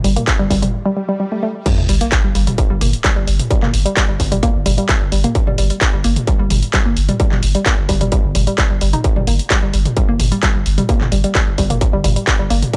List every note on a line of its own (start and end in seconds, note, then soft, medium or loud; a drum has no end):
0.04 0.16 G1 loud
0.04 0.09 G3 loud
0.04 open hi-hat loud
0.16 0.23 A#3 loud
0.16 closed hi-hat medium
0.16 mid tom medium
0.27 kick loud
0.27 clap loud
0.27 closed hi-hat medium
0.39 0.50 G1 medium
0.39 0.43 G3 loud
0.50 0.62 G1 loud
0.50 0.61 G3 loud
0.50 kick medium
0.50 open hi-hat medium
0.62 0.69 G3 medium
0.62 closed hi-hat medium
0.62 mid tom medium
0.74 swell medium
0.86 0.90 G3 loud
0.97 1.04 G3 medium
1.09 1.19 G3 loud
1.20 1.24 G3 medium
1.32 1.42 A3 medium
1.43 1.47 A3 loud
1.66 1.73 G3 medium
1.66 kick loud
1.66 closed hi-hat medium
1.66 crash loud
1.66 sub drop medium
1.78 1.88 G1 medium
1.78 mid tom medium
1.89 2.01 G1 loud
1.89 1.93 G3 loud
1.89 open hi-hat loud
2.01 2.08 A#3 loud
2.01 closed hi-hat medium
2.12 kick loud
2.12 clap loud
2.12 closed hi-hat medium
2.24 2.34 G1 medium
2.24 2.28 G3 loud
2.35 2.47 G1 loud
2.35 2.46 G3 loud
2.35 open hi-hat loud
2.47 2.54 G3 medium
2.47 closed hi-hat medium
2.47 mid tom medium
2.58 kick loud
2.58 closed hi-hat medium
2.70 2.81 G1 medium
2.70 2.74 G3 loud
2.81 2.93 G1 loud
2.81 2.88 A#3 loud
2.81 mid tom medium
2.81 open hi-hat loud
2.93 closed hi-hat medium
3.04 3.09 G3 loud
3.04 kick loud
3.04 clap loud
3.04 closed hi-hat medium
3.16 3.27 G1 medium
3.16 3.26 G3 loud
3.27 3.39 G1 loud
3.27 3.35 G3 medium
3.27 open hi-hat medium
3.39 closed hi-hat medium
3.39 mid tom medium
3.50 3.55 G3 loud
3.50 kick loud
3.50 closed hi-hat medium
3.62 3.73 G1 medium
3.62 3.69 A#3 loud
3.62 clap soft
3.62 mid tom medium
3.74 3.85 G1 loud
3.74 open hi-hat loud
3.86 3.90 G3 loud
3.86 closed hi-hat medium
3.97 4.07 G3 loud
3.97 kick loud
3.97 clap loud
3.97 closed hi-hat medium
4.09 4.19 G1 medium
4.09 4.15 G3 medium
4.20 4.32 G1 loud
4.20 kick medium
4.20 open hi-hat loud
4.32 4.36 G3 loud
4.32 closed hi-hat medium
4.32 mid tom medium
4.43 4.50 A#3 loud
4.43 kick loud
4.43 closed hi-hat medium
4.55 4.65 G1 medium
4.66 4.78 G1 loud
4.66 4.70 G3 loud
4.66 mid tom medium
4.66 open hi-hat loud
4.78 4.88 G3 loud
4.78 closed hi-hat medium
4.89 4.96 G3 medium
4.89 kick loud
4.89 clap loud
4.89 closed hi-hat medium
5.01 5.12 G1 medium
5.12 5.24 G1 loud
5.12 5.16 G3 loud
5.12 open hi-hat loud
5.24 5.31 A#3 loud
5.24 closed hi-hat medium
5.24 mid tom medium
5.35 kick loud
5.35 closed hi-hat medium
5.47 5.58 G1 medium
5.47 5.51 G3 loud
5.47 mid tom medium
5.58 5.70 G1 loud
5.58 5.69 G3 loud
5.58 open hi-hat loud
5.70 5.77 G3 medium
5.70 closed hi-hat medium
5.81 kick loud
5.81 clap loud
5.81 closed hi-hat medium
5.93 6.04 G1 medium
5.93 5.97 G3 loud
6.04 6.16 G1 loud
6.04 6.12 A#3 loud
6.04 open hi-hat loud
6.16 closed hi-hat medium
6.16 mid tom medium
6.27 6.32 G3 loud
6.27 kick loud
6.27 closed hi-hat medium
6.39 6.50 G1 medium
6.39 6.49 G3 loud
6.50 6.62 G1 loud
6.50 6.58 G3 medium
6.50 mid tom medium
6.50 open hi-hat loud
6.62 closed hi-hat medium
6.73 6.78 G3 loud
6.73 kick loud
6.73 clap loud
6.73 closed hi-hat medium
6.86 6.96 G1 medium
6.86 6.92 A#3 loud
6.97 7.08 G1 loud
6.97 open hi-hat loud
7.09 7.13 G3 loud
7.09 closed hi-hat medium
7.09 mid tom medium
7.20 7.31 G3 loud
7.20 kick loud
7.20 closed hi-hat medium
7.32 7.42 G1 medium
7.32 7.38 G3 medium
7.32 clap soft
7.32 mid tom medium
7.43 7.55 G1 loud
7.43 open hi-hat loud
7.55 7.59 G3 loud
7.55 closed hi-hat medium
7.66 7.73 A#3 loud
7.66 kick loud
7.66 clap loud
7.66 closed hi-hat medium
7.78 7.88 G1 medium
7.89 8.01 G1 loud
7.89 7.93 G3 loud
7.89 kick medium
7.89 open hi-hat loud
8.01 8.11 G3 loud
8.01 closed hi-hat medium
8.01 mid tom loud
8.12 8.19 G3 medium
8.12 kick loud
8.12 closed hi-hat medium
8.24 8.35 G1 medium
8.35 8.47 G1 loud
8.35 8.42 G3 medium
8.35 mid tom medium
8.35 open hi-hat loud
8.47 8.54 G3 loud
8.47 closed hi-hat medium
8.58 8.65 G3 medium
8.58 kick loud
8.58 clap loud
8.58 closed hi-hat medium
8.70 8.81 G1 medium
8.70 8.80 G3 medium
8.81 8.93 G1 loud
8.81 8.89 G3 loud
8.81 open hi-hat loud
8.93 9.03 D#4 loud
8.93 closed hi-hat medium
8.93 mid tom medium
9.04 kick loud
9.04 closed hi-hat medium
9.16 9.27 G1 medium
9.16 9.20 G3 loud
9.16 mid tom loud
9.27 9.39 G1 loud
9.27 9.35 A#3 loud
9.27 open hi-hat loud
9.39 closed hi-hat medium
9.50 9.55 G3 loud
9.50 kick loud
9.50 clap loud
9.50 closed hi-hat medium
9.63 9.73 G1 medium
9.63 9.72 G3 loud
9.74 9.85 G1 loud
9.74 9.81 G3 medium
9.74 open hi-hat loud
9.85 closed hi-hat medium
9.85 mid tom loud
9.97 10.01 G3 loud
9.97 kick loud
9.97 closed hi-hat medium
10.09 10.19 G1 medium
10.09 10.15 A#3 loud
10.20 10.31 G1 loud
10.20 mid tom loud
10.20 open hi-hat loud
10.32 10.36 G3 loud
10.32 closed hi-hat medium
10.43 10.54 G3 loud
10.43 kick loud
10.43 clap loud
10.43 closed hi-hat medium
10.55 10.65 G1 medium
10.55 10.61 G3 medium
10.66 10.78 G1 loud
10.66 open hi-hat medium
10.78 10.82 G3 loud
10.78 closed hi-hat medium
10.78 mid tom medium
10.89 10.96 A#3 loud
10.89 kick loud
10.89 closed hi-hat medium
11.01 11.11 G1 medium
11.01 clap soft
11.01 mid tom loud
11.12 11.24 G1 loud
11.12 11.16 G3 loud
11.12 open hi-hat loud
11.24 11.34 G3 loud
11.24 closed hi-hat medium
11.35 11.42 G3 medium
11.35 kick loud
11.35 clap loud
11.35 closed hi-hat medium
11.47 11.58 G1 medium
11.58 11.70 G1 loud
11.58 11.63 G3 loud
11.58 kick medium
11.58 open hi-hat medium
11.70 11.77 A#3 loud
11.70 closed hi-hat medium
11.70 mid tom loud
11.81 kick loud
11.81 closed hi-hat medium
11.93 12.04 G1 medium
11.93 11.97 G3 loud
12.04 12.16 G1 loud
12.04 12.15 G3 loud
12.04 mid tom loud
12.04 open hi-hat loud
12.16 12.23 G3 medium
12.16 closed hi-hat medium
12.27 kick loud
12.27 clap loud
12.27 closed hi-hat medium
12.39 12.50 G1 medium
12.39 12.43 G3 loud
12.50 12.62 G1 loud
12.50 12.58 A#3 loud
12.50 open hi-hat medium
12.62 closed hi-hat medium
12.62 mid tom medium
12.73 12.77 G3 loud
12.73 kick loud
12.73 closed hi-hat medium